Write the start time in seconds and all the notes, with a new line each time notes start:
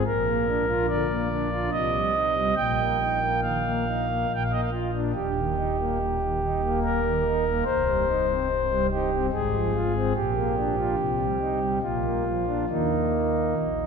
0.06 A#1 A#2 A#4
0.28 A#3
0.48 D4
0.68 F4
0.88 D3 D5
1.09 A#3
1.31 D4
1.51 F4
1.71 C2 C3 D#5
1.93 G3
2.14 D#4
2.35 G3
2.56 A#1 A#2 G5
2.78 A#3
3.00 D#4
3.21 A#3
3.42 D#3 F5
3.65 A#3
3.86 D#4
4.07 A#3
4.29 A#1 A#2
4.34 G5
4.43 F5
4.50 A#3 D#5
4.61 F5
4.71 F4
4.94 D4
5.14 D#1 D#2 G4
5.35 D#3
5.57 D#4
5.78 A#3
5.99 A#2
6.21 D#3
6.43 D#4
6.62 A#3
6.83 A#4
7.05 D#3
7.26 D#4
7.47 A#3
7.66 C1 C2 C5
7.87 G3
8.07 D#4
8.29 C4
8.50 G2
8.70 G3
8.91 D#4 G4
9.12 C4
9.33 G#1 G#2 G#4
9.53 F3
9.75 F4
9.95 C4
10.15 A#1 A#2 G4
10.35 A#3
10.57 D4
10.78 F4
10.98 C2 C3
11.20 G3
11.40 D#4
11.61 G3
11.82 A#1 A#2 F4
12.04 A#3
12.25 F3
12.46 D4
12.69 D#2 D#3 A#3 D#4
13.56 A#1 A#2